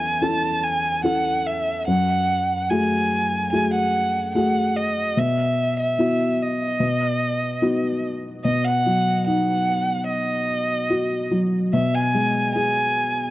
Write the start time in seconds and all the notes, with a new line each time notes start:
Already playing: E2 C#4 E4 A4 G#5
0.21 C#4 E4 A4 A5
0.63 G#5
1.03 C#4 E4 A4 F#5
1.46 E5
1.87 F#2 F#5
2.70 A3 F#4 G#4 G#5
3.53 A3 F#4 G#4 G#5
3.74 F#5
4.35 A3 F#4 G#4 F#5
4.77 D#5
5.17 B2 E5
5.80 E5
5.99 B3 E4 F#4
6.43 D#5
6.80 B2
7.62 B3 D#4 F#4
8.45 B2 D#5
8.65 F#5
8.86 F#3
9.27 D#4 F#5
10.08 D#5
10.90 F#4
11.31 F#3
11.73 B2 E5
11.95 G#5
12.14 G#3
12.56 G#4 G#5